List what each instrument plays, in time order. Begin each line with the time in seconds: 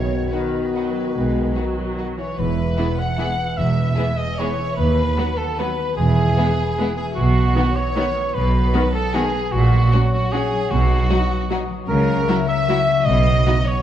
Already playing: double bass section B1, cello section B2, harp B2, bassoon D#3, clarinet B3, french horn section F#4, flute section C#5, violin section C#5
0.09 harp B3
0.31 viola section D#3, bassoon D#3, clarinet B3, harp D#4, violin section D#4 F#4 B4, flute section B4
0.53 harp F#4
0.74 viola section F#3, violin section D#4 F#4, harp B4
0.96 harp F#4
1.15 double bass section B1, cello section B2, harp B2, viola section G#3
1.36 harp B3
1.56 viola section F#3, violin section D#4 F#4, harp D#4
1.77 harp F#4
1.98 violin section D#4 F#4, harp B4
2.18 viola section E3, harp F#4, cor anglais C#5, violin section C#5
2.37 double bass section E1, cello section E2, harp E3, violin section B4, cor anglais B4
2.58 harp E4
2.77 viola section E3 B3, french horn section G#3 B3, violin section E4 G#4, harp B4
2.99 cor anglais F#5, violin section F#5, harp G#5
3.18 viola section E3 B3, french horn section G#3 B3, violin section E4 G#4, harp B4
3.41 harp E4
3.57 double bass section E1, cello section E2, harp E3, cor anglais E5, violin section E5
3.78 harp B3
3.96 viola section E3 B3, french horn section G#3 B3, violin section E4 G#4, harp B4
4.17 cor anglais D#5, violin section D#5, harp G#5
4.38 viola section E3 B3, french horn section G#3 B3, violin section E4 G#4 C#5, harp B4, cor anglais C#5
4.59 harp E4
4.76 double bass section D#2, cello section D#2, harp D#3, cor anglais B4, violin section B4
4.98 harp B3
5.17 viola section F#3 B3, french horn section F#3 B3, violin section B3 F#4, harp B4
5.38 cor anglais A4, violin section A4, harp F#5
5.59 viola section F#3 B3, french horn section F#3 B3, violin section B3 F#4 B4, cor anglais B4, harp B4
5.79 harp B3
5.97 double bass section E1, cello section E2, harp E3, cor anglais G#4, violin section G#4
6.18 harp E4
6.38 french horn section E3 B3, viola section G#3 B3, violin section B3 E4, harp B4
6.58 harp B5
6.78 french horn section E3 B3, viola section G#3 B3, violin section B3 E4, harp B4
6.97 harp E4, violin section G#4, cor anglais G#4
7.15 double bass section B1, harp B2, cello section B2, violin section F#4, cor anglais F#4
7.36 harp B3
7.55 viola section D#3 B3, french horn section D#3 B3, violin section B3 F#4, harp B4
7.75 violin section C#5, cor anglais C#5, harp D#5
7.95 viola section D#3 B3, french horn section D#3 B3, violin section B3 F#4, harp B4
8.18 harp B3
8.34 double bass section B1, cello section B2, harp B2, cor anglais B4, violin section B4
8.55 harp F#3
8.72 french horn section D#3 B3, viola section D#3 B3, violin section B3 F#4, harp B4
8.94 violin section A4, cor anglais A4, harp D#5
9.14 viola section D#3 B3, french horn section D#3 B3, violin section B3 F#4 G#4, cor anglais G#4, harp B4
9.35 harp B3
9.52 double bass section A#1, harp A#2, cello section A#2, cor anglais F#4, violin section F#4
9.73 harp F#3
9.92 french horn section F#3 C#4, viola section F#3, violin section C#4 F#4, harp C#5
10.13 cor anglais F#4, violin section F#4, harp F#5
10.32 viola section F#3, french horn section F#3 C#4, violin section C#4 F#4 G#4, cor anglais G#4, harp C#5
10.53 harp F#3
10.71 double bass section B1, timpani B2, harp B2, cello section B2, cor anglais F#4, violin section F#4
10.90 harp F#3
11.08 french horn section F#3 D#4, viola section F#3, violin section D#4 F#4, harp D#5
11.31 harp F#5
11.50 french horn section F#3 D#4, viola section F#3, violin section D#4 F#4, harp D#5
11.70 harp F#3
11.88 double bass section C#2, cello section C#3, harp C#3, violin section A#4, cor anglais A#4
12.08 harp F#3
12.27 viola section F#3, french horn section F#3 E4, violin section E4 F#4, harp E5
12.47 violin section E5, cor anglais E5, harp F#5
12.68 viola section F#3, french horn section F#3 E4, violin section E4 F#4, harp E5
12.88 harp F#3
13.05 double bass section B1, cello section B2, timpani B2, harp B2, violin section D#5, cor anglais D#5
13.27 harp B3
13.45 french horn section F#3 D#4, viola section F#3 B3, violin section D#4 F#4, harp D#5
13.65 violin section C#5, cor anglais C#5, harp F#5